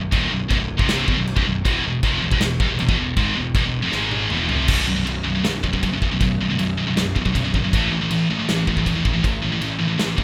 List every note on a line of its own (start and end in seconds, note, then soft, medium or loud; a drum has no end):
0.00 0.11 B0 medium
0.12 0.30 D#1 medium
0.12 0.30 D#2 medium
0.12 0.30 A#2 medium
0.12 0.31 D#3 medium
0.12 kick loud
0.12 china medium
0.30 0.49 B0 medium
0.30 0.46 B1 medium
0.30 0.46 F#2 medium
0.49 0.59 B0 loud
0.49 0.58 B1 medium
0.49 0.58 F#2 loud
0.49 kick loud
0.49 china medium
0.59 0.78 B0 medium
0.59 0.75 B1 medium
0.59 0.75 F#2 medium
0.78 1.06 C1 loud
0.78 1.06 C2 medium
0.78 1.07 G2 medium
0.78 1.07 C3 loud
0.78 kick loud
0.89 snare loud
0.89 china medium
1.08 1.17 E1 loud
1.08 1.17 E2 medium
1.08 1.17 B2 medium
1.08 kick loud
1.18 1.35 B0 medium
1.18 1.33 B1 medium
1.18 1.33 F#2 medium
1.27 china medium
1.36 1.45 B0 loud
1.36 1.45 B1 medium
1.36 1.45 F#2 medium
1.36 kick loud
1.46 1.64 B0 medium
1.46 1.61 B1 medium
1.46 1.61 F#2 medium
1.65 1.83 E1 medium
1.65 1.83 E2 medium
1.65 1.83 B2 loud
1.65 1.84 E3 medium
1.65 kick loud
1.65 china medium
1.85 2.02 E1 medium
1.85 1.99 E2 medium
1.85 2.00 B2 medium
2.03 2.21 F1 medium
2.03 2.22 F2 loud
2.03 2.22 C3 loud
2.03 2.22 F3 loud
2.03 kick loud
2.03 china medium
2.22 2.31 E1 medium
2.22 2.31 E2 medium
2.22 2.32 B2 medium
2.31 2.40 E1 loud
2.31 2.41 E2 medium
2.31 2.41 B2 loud
2.31 kick loud
2.41 2.59 E1 medium
2.41 2.57 E2 medium
2.41 2.57 B2 medium
2.41 snare loud
2.41 china medium
2.60 2.69 F1 loud
2.60 2.69 F2 medium
2.60 2.69 C3 medium
2.60 kick loud
2.70 2.79 E1 medium
2.70 2.79 E2 medium
2.70 2.79 B2 medium
2.79 2.88 E1 medium
2.79 2.88 E2 medium
2.79 2.88 B2 medium
2.79 china medium
2.88 2.97 E1 medium
2.88 2.97 E2 loud
2.88 2.98 B2 loud
2.88 kick loud
2.98 3.16 E1 medium
2.98 3.13 E2 medium
2.98 3.14 B2 medium
3.17 3.35 G#1 medium
3.17 3.35 G#2 medium
3.17 3.36 D#3 loud
3.17 3.36 G#3 medium
3.17 kick loud
3.17 china medium
3.36 3.54 E1 medium
3.36 3.52 E2 medium
3.36 3.52 B2 medium
3.55 3.64 E1 medium
3.55 3.64 E2 medium
3.55 3.64 B2 loud
3.55 kick loud
3.55 china medium
3.64 3.82 E1 medium
3.64 3.80 E2 medium
3.64 3.80 B2 medium
3.82 3.91 F1 medium
3.82 3.92 F2 medium
3.82 3.92 C3 medium
3.92 4.28 G#1 loud
3.92 4.30 G#2 medium
3.92 4.30 D#3 loud
3.92 4.31 G#3 loud
3.92 snare medium
4.11 high tom medium
4.30 4.48 E1 medium
4.30 4.49 E2 loud
4.30 4.50 B2 loud
4.30 4.50 E3 loud
4.30 mid tom medium
4.49 4.67 F1 loud
4.49 4.67 F2 medium
4.49 4.68 C3 loud
4.49 4.69 F3 medium
4.49 floor tom loud
4.68 4.84 B0 medium
4.68 4.86 B1 medium
4.68 4.85 F#2 medium
4.68 4.87 B2 medium
4.68 kick loud
4.68 crash loud
4.68 crash medium
4.87 5.03 B0 medium
4.87 4.96 B1 medium
4.87 4.95 F#2 medium
4.96 5.04 B1 medium
4.96 5.05 F#2 medium
5.05 5.22 B0 medium
5.05 5.23 B1 medium
5.05 5.23 F#2 medium
5.05 crash medium
5.24 5.41 B0 loud
5.24 5.34 B1 medium
5.24 5.34 F#2 medium
5.35 5.42 B1 medium
5.35 5.43 F#2 medium
5.43 5.59 B0 loud
5.43 5.61 B1 medium
5.43 5.62 F#2 loud
5.43 snare loud
5.43 crash medium
5.63 5.79 B0 medium
5.63 5.72 B1 medium
5.63 5.71 F#2 medium
5.63 kick medium
5.73 5.82 B1 medium
5.73 5.82 F#2 medium
5.73 kick medium
5.83 5.98 F#1 medium
5.83 5.92 B1 medium
5.83 5.92 F#2 loud
5.83 kick medium
5.83 crash medium
5.93 6.02 B1 medium
5.93 6.01 F#2 medium
6.02 6.17 B0 loud
6.02 6.11 B1 medium
6.02 6.10 F#2 medium
6.02 kick medium
6.11 6.21 B1 medium
6.11 6.21 F#2 medium
6.20 6.36 B0 medium
6.20 6.38 B1 medium
6.20 6.39 F#2 medium
6.20 kick loud
6.20 crash medium
6.40 6.55 B0 medium
6.40 6.49 B1 medium
6.40 6.49 F#2 medium
6.50 6.57 B1 medium
6.50 6.57 F#2 loud
6.58 6.74 B0 loud
6.58 6.76 B1 medium
6.58 6.76 F#2 loud
6.58 crash medium
6.77 6.93 B0 medium
6.77 6.86 B1 medium
6.77 6.86 F#2 medium
6.87 6.95 B1 medium
6.87 6.96 F#2 medium
6.96 7.12 B0 loud
6.96 7.14 B1 medium
6.96 7.14 F#2 medium
6.96 snare loud
6.96 crash medium
7.16 7.24 B1 medium
7.16 7.31 B1 medium
7.16 7.24 F#2 medium
7.16 kick medium
7.25 7.33 B1 medium
7.25 7.34 F#2 medium
7.25 kick medium
7.35 7.50 B0 medium
7.35 7.44 B1 medium
7.35 7.44 F#2 loud
7.35 kick medium
7.35 crash medium
7.45 7.54 B1 medium
7.45 7.54 F#2 medium
7.54 7.69 G1 medium
7.54 7.63 B1 medium
7.54 7.63 F#2 medium
7.54 kick loud
7.64 7.73 B1 medium
7.64 7.73 F#2 medium
7.73 7.88 A1 medium
7.73 7.91 A2 medium
7.73 7.91 E3 medium
7.73 7.91 A3 loud
7.73 kick loud
7.73 crash medium
7.91 8.06 A1 medium
7.91 8.01 A2 medium
7.91 8.00 E3 medium
8.01 8.09 A2 medium
8.01 8.10 E3 medium
8.10 8.25 A1 medium
8.10 8.28 A2 medium
8.10 8.28 E3 loud
8.10 crash medium
8.29 8.45 A1 loud
8.29 8.38 A2 medium
8.29 8.38 E3 medium
8.39 8.48 A2 medium
8.39 8.48 E3 medium
8.49 8.64 A1 loud
8.49 8.66 A2 medium
8.49 8.66 E3 medium
8.49 snare loud
8.49 crash medium
8.67 8.82 A1 medium
8.67 8.77 A2 medium
8.67 8.76 E3 medium
8.67 kick medium
8.77 8.84 A2 medium
8.77 8.85 E3 medium
8.77 kick medium
8.86 9.02 E1 loud
8.86 8.95 A2 medium
8.86 8.94 E3 loud
8.86 kick medium
8.86 crash medium
8.95 9.04 A2 medium
8.95 9.03 E3 medium
9.05 9.20 A1 loud
9.05 9.13 A2 medium
9.05 9.12 E3 medium
9.05 kick loud
9.13 9.22 A2 medium
9.13 9.22 E3 loud
9.23 9.39 A1 loud
9.23 9.41 A2 medium
9.23 9.41 E3 medium
9.23 kick loud
9.23 crash medium
9.43 9.58 A1 medium
9.43 9.51 A2 medium
9.43 9.51 E3 loud
9.52 9.60 A2 medium
9.52 9.60 E3 medium
9.61 9.77 A1 medium
9.61 9.78 A2 medium
9.61 9.78 E3 medium
9.61 crash medium
9.79 9.96 A1 loud
9.79 9.87 A2 medium
9.79 9.87 E3 medium
9.88 9.96 A2 medium
9.88 9.97 E3 medium
9.98 10.15 A1 loud
9.98 10.16 A2 medium
9.98 10.15 E3 medium
9.98 snare loud
9.98 crash medium
10.17 10.24 A1 medium
10.17 10.24 A2 medium
10.17 10.24 E3 medium
10.17 kick medium